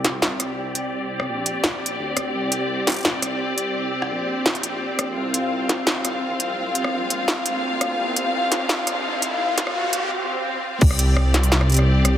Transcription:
0.00 0.21 C2 medium
0.00 10.77 C4 medium
0.00 5.12 G4 medium
0.00 5.14 D5 medium
0.05 snare medium
0.05 closed hi-hat medium
0.22 1.27 C2 medium
0.22 snare loud
0.40 cross-stick medium
0.40 closed hi-hat medium
0.75 closed hi-hat medium
1.20 cross-stick medium
1.28 1.98 A#1 medium
1.46 closed hi-hat medium
1.64 snare loud
1.86 closed hi-hat medium
1.99 2.33 D2 medium
2.17 cross-stick medium
2.17 closed hi-hat medium
2.34 3.04 C2 medium
2.52 closed hi-hat medium
2.87 snare medium
2.87 closed hi-hat medium
2.90 closed hi-hat medium
2.92 closed hi-hat soft
2.94 closed hi-hat soft
2.96 closed hi-hat soft
2.98 closed hi-hat soft
3.01 closed hi-hat soft
3.03 4.09 C2 medium
3.03 snare loud
3.03 closed hi-hat soft
3.22 cross-stick soft
3.22 closed hi-hat medium
3.58 closed hi-hat medium
4.02 cross-stick medium
4.10 5.15 A#1 loud
4.46 snare loud
4.55 closed hi-hat soft
4.63 closed hi-hat medium
4.99 cross-stick medium
4.99 closed hi-hat medium
5.16 5.86 C2 loud
5.16 10.77 F4 medium
5.16 10.79 F5 medium
5.16 riser medium
5.34 closed hi-hat medium
5.69 snare medium
5.69 closed hi-hat medium
5.87 6.92 C2 medium
5.87 snare loud
6.05 cross-stick medium
6.05 closed hi-hat medium
6.40 closed hi-hat medium
6.75 closed hi-hat medium
6.84 cross-stick medium
6.93 7.62 A#1 loud
7.10 closed hi-hat medium
7.28 snare loud
7.46 closed hi-hat medium
7.63 7.98 D2 loud
7.81 cross-stick medium
7.81 closed hi-hat medium
7.99 8.68 C2 loud
8.16 closed hi-hat medium
8.52 snare medium
8.52 closed hi-hat medium
8.69 9.74 C2 loud
8.69 snare loud
8.87 cross-stick medium
8.87 closed hi-hat medium
9.22 closed hi-hat medium
9.58 snare medium
9.58 closed hi-hat medium
9.67 cross-stick medium
9.75 10.11 C2 loud
9.93 closed hi-hat medium
10.11 swell medium
10.81 11.51 C2 loud
10.81 12.18 C4 medium
10.81 12.18 G4 medium
10.81 12.18 D5 medium
10.81 kick loud
10.81 crash loud
10.91 cross-stick medium
10.99 closed hi-hat medium
11.17 cross-stick medium
11.34 cross-stick medium
11.34 snare medium
11.34 closed hi-hat medium
11.43 open hi-hat medium
11.52 12.18 C2 loud
11.52 snare loud
11.61 cross-stick medium
11.70 closed hi-hat soft
11.72 closed hi-hat soft
11.74 closed hi-hat medium
11.77 cross-stick medium
11.77 closed hi-hat medium
12.05 cross-stick medium
12.05 closed hi-hat medium

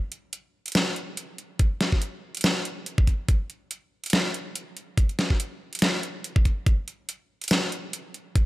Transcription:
0.12 closed hi-hat soft
0.33 closed hi-hat medium
0.66 closed hi-hat soft
0.68 closed hi-hat medium
0.72 snare loud
0.72 closed hi-hat medium
0.75 closed hi-hat medium
0.96 closed hi-hat medium
1.17 closed hi-hat medium
1.38 closed hi-hat medium
1.59 kick loud
1.59 closed hi-hat medium
1.81 snare medium
1.81 closed hi-hat soft
1.92 kick medium
2.02 closed hi-hat medium
2.35 closed hi-hat soft
2.37 closed hi-hat medium
2.41 snare loud
2.41 closed hi-hat medium
2.44 closed hi-hat medium
2.65 closed hi-hat medium
2.86 closed hi-hat medium
2.98 kick loud
3.07 kick medium
3.07 closed hi-hat medium
3.28 kick loud
3.28 closed hi-hat medium
3.50 closed hi-hat medium
3.71 closed hi-hat medium
4.04 closed hi-hat soft
4.06 closed hi-hat medium
4.10 snare loud
4.10 closed hi-hat medium
4.13 closed hi-hat medium
4.34 closed hi-hat medium
4.55 closed hi-hat medium
4.77 closed hi-hat medium
4.98 kick loud
4.98 closed hi-hat medium
5.09 closed hi-hat soft
5.19 snare medium
5.19 closed hi-hat medium
5.30 kick medium
5.40 closed hi-hat medium
5.73 closed hi-hat medium
5.75 closed hi-hat medium
5.79 snare loud
5.79 closed hi-hat medium
5.82 closed hi-hat medium
6.03 closed hi-hat medium
6.24 closed hi-hat medium
6.36 kick loud
6.45 kick medium
6.45 closed hi-hat medium
6.66 kick loud
6.66 closed hi-hat medium
6.88 closed hi-hat medium
7.09 closed hi-hat medium
7.42 closed hi-hat medium
7.44 closed hi-hat medium
7.48 snare loud
7.48 closed hi-hat medium
7.51 closed hi-hat medium
7.72 closed hi-hat medium
7.93 closed hi-hat medium
8.14 closed hi-hat medium
8.36 kick loud
8.36 closed hi-hat medium

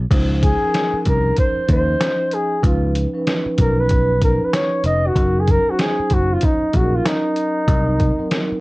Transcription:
0.10 0.53 C#2 loud
0.10 0.53 F3 medium
0.10 0.53 C#4 medium
0.10 0.54 D#4 medium
0.10 0.54 C5 loud
0.10 kick loud
0.10 closed hi-hat medium
0.10 crash medium
0.43 1.02 G#4 loud
0.43 kick loud
0.43 closed hi-hat medium
0.62 1.56 F3 medium
0.62 1.56 C#4 medium
0.62 1.56 D#4 medium
0.62 1.56 A#4 medium
0.74 snare medium
0.74 closed hi-hat medium
0.94 muted picked electric bass stroke soft
1.05 1.31 C2 medium
1.05 1.36 A#4 medium
1.05 kick medium
1.05 closed hi-hat medium
1.37 1.67 C5 medium
1.37 kick medium
1.37 closed hi-hat medium
1.67 1.94 D#2 medium
1.67 2.53 F3 medium
1.67 2.53 C#4 medium
1.67 2.53 D#4 medium
1.67 2.53 D#5 medium
1.67 kick medium
1.67 closed hi-hat medium
1.72 2.36 C5 loud
2.01 snare loud
2.01 closed hi-hat loud
2.31 2.65 G#4 medium
2.31 closed hi-hat medium
2.62 3.05 C#2 medium
2.62 3.05 F3 medium
2.62 3.05 C#4 medium
2.62 3.06 D#4 medium
2.62 2.94 F4 medium
2.62 3.06 B4 medium
2.62 kick loud
2.62 closed hi-hat medium
2.95 closed hi-hat medium
3.14 4.08 F3 medium
3.14 4.08 C#4 medium
3.14 4.08 D#4 medium
3.14 4.09 B4 loud
3.27 snare loud
3.27 closed hi-hat medium
3.46 muted picked electric bass stroke soft
3.58 4.38 B1 medium
3.58 3.82 A#4 medium
3.58 kick medium
3.58 closed hi-hat medium
3.80 4.22 B4 medium
3.89 kick medium
3.89 closed hi-hat medium
4.21 5.06 F3 medium
4.21 5.06 C#4 medium
4.21 5.06 D#4 medium
4.21 4.46 A#4 medium
4.21 5.06 B4 medium
4.21 kick medium
4.21 closed hi-hat medium
4.45 4.56 B4 medium
4.53 4.85 C#5 loud
4.53 snare loud
4.53 closed hi-hat medium
4.84 5.10 F1 medium
4.84 5.09 D#5 loud
4.84 closed hi-hat medium
5.07 5.42 F#4 medium
5.16 5.58 F#1 loud
5.16 5.59 F#3 medium
5.16 5.59 C#4 medium
5.16 5.59 D#4 medium
5.16 5.59 A#4 medium
5.16 kick loud
5.16 closed hi-hat medium
5.40 5.52 G#4 medium
5.47 5.72 A#4 loud
5.47 kick medium
5.47 closed hi-hat medium
5.67 6.61 F#3 medium
5.67 6.61 C#4 medium
5.67 6.62 D#4 medium
5.67 5.83 F#4 medium
5.67 6.62 C5 medium
5.79 6.15 G#4 medium
5.79 snare loud
5.79 closed hi-hat medium
6.00 muted picked electric bass stroke soft
6.10 6.36 F#1 medium
6.10 kick medium
6.10 closed hi-hat medium
6.14 6.35 F#4 medium
6.33 6.46 F4 medium
6.41 6.78 D#4 medium
6.41 kick medium
6.41 closed hi-hat medium
6.73 6.99 A#1 medium
6.73 7.58 F#3 medium
6.73 7.58 C#4 medium
6.73 7.58 D#4 medium
6.73 6.97 F#4 medium
6.73 6.82 G#4 medium
6.73 kick medium
6.73 closed hi-hat medium
6.81 7.62 A#4 medium
6.96 7.09 F4 medium
7.06 8.60 D#4 medium
7.06 snare loud
7.06 closed hi-hat loud
7.36 closed hi-hat medium
7.68 8.10 C2 loud
7.68 8.11 F#3 medium
7.68 8.11 C4 medium
7.68 8.11 D#4 medium
7.68 8.11 A#4 medium
7.68 kick loud
7.68 closed hi-hat medium
8.00 kick loud
8.00 closed hi-hat medium
8.19 8.60 F#3 loud
8.19 8.60 C4 medium
8.19 8.60 D#4 medium
8.19 8.60 A#4 loud
8.31 snare loud
8.31 closed hi-hat medium
8.52 muted picked electric bass stroke soft

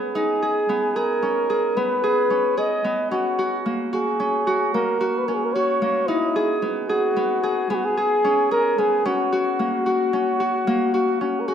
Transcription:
0.00 0.69 B3 medium
0.00 1.22 C#4 medium
0.00 0.42 G#4 medium
0.15 2.85 D#4 medium
0.15 0.98 G#4 medium
0.42 0.95 G#4 medium
0.69 1.76 B3 medium
0.96 1.49 G#4 medium
0.96 1.78 A#4 medium
1.23 2.30 C#4 medium
1.50 2.03 G#4 medium
1.77 2.84 B3 medium
1.77 2.60 B4 medium
2.04 2.57 G#4 medium
2.30 3.11 C#4 medium
2.57 4.85 G#4 medium
2.57 3.11 D#5 medium
2.84 3.72 B3 medium
3.11 4.19 C#4 medium
3.11 3.61 F#4 medium
3.39 3.92 F#4 medium
3.66 4.74 A#3 medium
3.93 4.47 F#4 medium
3.93 4.70 G#4 medium
4.20 5.28 C#4 medium
4.47 5.00 F#4 medium
4.74 5.81 A#3 medium
4.74 5.19 A#4 medium
5.01 5.55 F#4 medium
5.18 5.28 B4 medium
5.27 8.18 C#4 medium
5.27 5.36 A#4 medium
5.35 5.46 G#4 medium
5.45 5.55 A#4 medium
5.53 7.99 F#4 medium
5.53 6.09 C#5 medium
5.82 6.68 A#3 medium
6.07 8.79 D#4 medium
6.07 6.62 E4 medium
6.36 6.89 G#4 medium
6.62 7.16 B3 medium
6.89 7.66 F#4 medium
6.89 7.43 G#4 medium
7.16 7.70 B3 medium
7.43 7.97 G#4 medium
7.70 8.78 B3 medium
7.70 7.76 G#4 medium
7.75 7.87 F#4 medium
7.85 8.51 G#4 medium
7.97 8.51 G#4 medium
8.24 9.05 C#4 medium
8.51 10.79 G#4 medium
8.51 8.80 A#4 medium
8.78 9.65 B3 medium
8.78 9.08 G#4 medium
9.05 10.13 C#4 medium
9.05 11.20 F#4 medium
9.32 9.86 F#4 medium
9.59 10.67 A#3 medium
9.86 10.40 F#4 medium
10.13 11.21 C#4 medium
10.40 10.93 F#4 medium
10.67 11.54 A#3 medium
10.94 11.48 F#4 medium
11.21 11.54 C#4 medium
11.21 11.42 F#4 medium
11.40 11.49 A#4 soft
11.48 11.54 F#4 medium
11.48 11.54 G#4 medium

